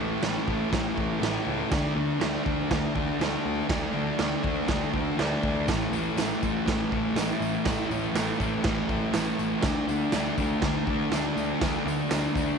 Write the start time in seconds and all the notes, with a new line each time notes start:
Already playing: A1 A2 A3
0.00 E3
0.22 A1 A2 E3, snare, crash
0.26 A3
0.48 A1 E3 A3, kick
0.71 A1 A2 E3 A3, kick, snare, crash
0.96 A1 E3 A3, kick
1.20 A1 A2 E3 A3, snare, crash
1.47 C#2
1.70 D2 D3 A3 D4, kick, snare, crash
1.95 D2 A3 D4
2.19 D2 D3 A3 D4, snare, crash
2.44 D2 A3 D4, kick
2.70 D2 D3 A3 D4, kick, snare, crash
2.95 D2 A3 D4, kick
3.20 D2 D3 A3 D4, snare, crash
3.45 D2
3.68 D2 D3 A3 D4, kick, snare, crash
3.93 D2 A3 D4
4.18 D2 D3 A3, snare, crash
4.22 D4
4.43 D2 A3 D4, kick
4.67 D2 D3 A3 D4, kick, snare, crash
4.93 D2 A3 D4, kick
5.17 D2 D3 A3 D4, snare, crash
5.43 D2, kick
5.68 A1 A2 E3 A3, kick, snare, tambourine, crash
5.92 A1 A3, tambourine
5.96 E3
6.16 A1 A2 E3, snare, tambourine, crash
6.21 A3
6.42 A1 E3 A3, kick, tambourine
6.67 A1 A2 E3 A3, kick, snare, tambourine, crash
6.92 A1 E3 A3, kick
7.15 A1 A2 E3, snare, tambourine, crash
7.20 A3
7.40 A1, tambourine
7.65 A1 A2 E3 A3, kick, snare, tambourine, crash
7.90 A1 E3 A3, tambourine
8.14 A1 A2 E3 A3, snare, tambourine, crash
8.39 A1 E3 A3, kick, tambourine
8.64 A1 A2 E3 A3, kick, snare, tambourine, crash
8.88 A1 E3 A3, kick, tambourine
9.13 A1 A2 E3 A3, snare, tambourine, crash
9.39 A1, tambourine
9.62 D2 D3 A3 D4, kick, snare, tambourine, crash
9.87 D2 A3 D4, tambourine
10.12 D2 D3 A3 D4, snare, tambourine, crash
10.37 D2 A3 D4, kick, tambourine
10.61 D2 D3 A3 D4, kick, snare, tambourine, crash
10.86 D2 A3 D4, kick
11.10 D2 D3 A3 D4, snare, tambourine, crash
11.36 D2, tambourine
11.60 D2 D3 A3 D4, kick, snare, tambourine, crash
11.85 D2 A3 D4, tambourine
12.10 D2 D3 A3 D4, snare, tambourine, crash
12.35 D2 A3 D4, kick, tambourine